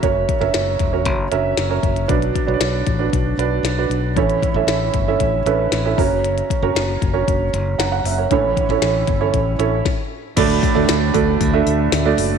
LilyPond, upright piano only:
<<
  \new Staff \with { instrumentName = "Upright piano" } { \time 4/4 \key d \major \tempo 4 = 116 << { r1 | r1 | r1 | r2. <fis'' ais''>16 fis''16 <cis'' e''>16 <ais' cis''>16~ |
<ais' cis''>16 r2. r8. | r1 | } \\ { <cis' fis' ais' cis''>8 r16 <cis' fis' ais' e''>8. r16 <cis' fis' ais' cis''>8 r16 <cis' fis' ais' e''>8 r16 <cis' fis' ais' cis''>8 r16 | <d' fis' b' d''>8 r16 <d' fis' b' cis'' d''>8. r16 <d' fis' b' d''>8 r16 <d' fis' b' d''>8 r16 <d' fis' b' d''>8 r16 | <cis' e' a' cis''>8 r16 <cis' e' a' e''>8. r16 <cis' e' a' e''>8 r16 <cis' e' a' b'>8 r16 <cis' e' a' e''>16 <cis' fis' ais' cis''>8~ | <cis' fis' ais' cis''>8 r16 <cis' fis' ais' cis''>8. r16 <cis' fis' ais' cis''>8 r4. r16 |
<cis' e' a' cis''>8 r16 <cis' e' a' cis''>8. r16 <cis' e' a' cis''>8 r16 <cis' e' a' cis''>8 r4 | <a d' fis' a' d''>8 r16 <a d' fis' a' d''>8 r16 <a d' fis' a' d''>8 r16 <a d' fis' a' e''>8. r16 <a d' fis' a' d''>8 r16 | } >> }
  \new Staff \with { instrumentName = "Upright piano" } { \clef bass \time 4/4 \key d \major cis4 r2. | <b, fis>4. r2 r8 | <a, e>4. r2 cis8~ | cis4 r2. |
<a, e>4. r2 r8 | a,4. r2 r8 | }
>>